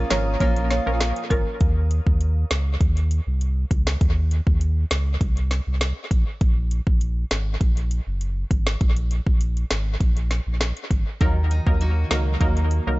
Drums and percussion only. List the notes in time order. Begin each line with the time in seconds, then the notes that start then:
0.10 snare, closed hi-hat
0.40 kick, closed hi-hat
0.56 closed hi-hat
0.71 snare, closed hi-hat
1.01 snare, closed hi-hat
1.16 closed hi-hat
1.31 kick, closed hi-hat
1.61 kick, closed hi-hat
1.91 closed hi-hat
2.07 kick
2.21 closed hi-hat
2.51 snare, closed hi-hat
2.81 kick, closed hi-hat
2.97 closed hi-hat
3.11 closed hi-hat
3.41 closed hi-hat
3.71 kick, closed hi-hat
3.87 snare
4.01 kick, closed hi-hat
4.31 closed hi-hat
4.47 kick
4.61 closed hi-hat
4.91 snare, closed hi-hat
5.21 kick, closed hi-hat
5.37 closed hi-hat
5.51 snare, closed hi-hat
5.81 snare, closed hi-hat
6.11 kick, closed hi-hat
6.41 kick, closed hi-hat
6.71 closed hi-hat
6.87 kick
7.01 closed hi-hat
7.31 snare, closed hi-hat
7.61 kick, closed hi-hat
7.77 closed hi-hat
7.91 closed hi-hat
8.21 closed hi-hat
8.51 kick, closed hi-hat
8.67 snare
8.81 kick, closed hi-hat
8.97 closed hi-hat
9.11 closed hi-hat
9.27 kick
9.41 closed hi-hat
9.57 closed hi-hat
9.71 snare, closed hi-hat
10.00 kick, closed hi-hat
10.17 closed hi-hat
10.31 snare, closed hi-hat
10.61 snare, closed hi-hat
10.77 closed hi-hat
10.91 kick, closed hi-hat
11.21 kick, closed hi-hat
11.51 closed hi-hat
11.67 kick
11.81 closed hi-hat
12.11 snare, closed hi-hat
12.41 kick, closed hi-hat
12.57 closed hi-hat
12.71 closed hi-hat